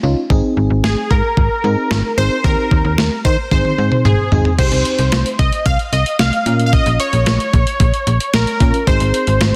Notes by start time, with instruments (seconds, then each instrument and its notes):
0.03 fm bass C#2, fm electric piano C#4 D#4 F4
0.30 fm bass G#1, fm electric piano C4 D#4 G#4, kick
0.57 fm bass G#1
0.70 fm bass G#1
0.84 fm bass G#1, analog polysynth G#4, snare
1.11 fm bass G#2, analog polysynth A#4, kick
1.37 fm bass G#1, kick
1.64 fm bass G#2, fm electric piano C4 D#4 G#4
1.91 fm bass G#1, snare
2.17 fm bass G#1, fm electric piano C4 D#4 G#4, analog polysynth C5
2.44 fm bass D#2, fm electric piano C4 D#4 G4, analog polysynth A#4, kick
2.71 fm bass D#2, kick
2.84 fm bass D#2
2.98 fm bass D#2, snare
3.25 fm bass D#3, analog polysynth C5, kick
3.51 fm bass G#1, fm electric piano C4 D#4 G#4, analog polysynth C5, kick, high tom
3.65 high tom
3.78 fm bass G#2, fm electric piano C4 D#4 G#4
3.92 mid tom
4.05 fm bass G#1, analog polysynth G#4, mid tom
4.32 fm bass G#1, fm electric piano C4 D#4 G#4, floor tom
4.45 floor tom
4.59 fm bass C2, fm electric piano C4 D#4 G4, analog polysynth C5, kick, closed hi-hat, crash
4.72 fm bass C2, closed hi-hat
4.85 closed hi-hat
4.99 fm bass C2, closed hi-hat
5.12 fm bass C2, snare, closed hi-hat
5.26 closed hi-hat
5.39 fm bass C2, analog polysynth D#5, kick, closed hi-hat
5.53 closed hi-hat
5.66 fm bass C2, analog polysynth F5, kick, closed hi-hat
5.79 closed hi-hat
5.93 fm bass C2, analog polysynth D#5, closed hi-hat
6.06 closed hi-hat
6.19 fm bass C2, analog polysynth F5, snare, closed hi-hat
6.33 closed hi-hat
6.46 fm bass A#2, fm electric piano C#4 F4 A#4, closed hi-hat
6.60 closed hi-hat
6.66 analog polysynth F5
6.73 analog polysynth D#5, kick, closed hi-hat
6.86 fm bass A#1, closed hi-hat
7.00 analog polysynth C#5, closed hi-hat
7.13 fm bass A#1, closed hi-hat
7.26 fm bass A#1, snare, closed hi-hat
7.40 closed hi-hat
7.53 fm bass A#1, kick, closed hi-hat
7.67 closed hi-hat
7.80 fm bass A#1, kick, closed hi-hat
7.94 closed hi-hat
8.07 fm bass A#1, closed hi-hat
8.20 closed hi-hat
8.34 fm bass A#1, analog polysynth A#4, snare, closed hi-hat
8.47 closed hi-hat
8.60 fm bass A#2, fm electric piano C#4 F4 A#4, kick, closed hi-hat
8.74 closed hi-hat
8.87 fm bass G#1, fm electric piano C4 D#4 G#4, analog polysynth C5, kick, closed hi-hat
9.00 fm bass G#1, closed hi-hat
9.14 closed hi-hat
9.27 fm bass G#1, closed hi-hat
9.41 fm bass G#1, snare, closed hi-hat